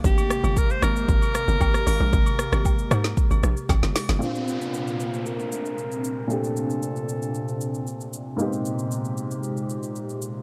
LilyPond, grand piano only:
\new Staff \with { instrumentName = "Grand piano" } { \time 4/4 \key bes \major \tempo 4 = 115 r1 | r1 | <bes, bes c' d' f'>1 | <bes, a c' d' g'>1 |
<aes, bes ces' c' ees' g'>1 | }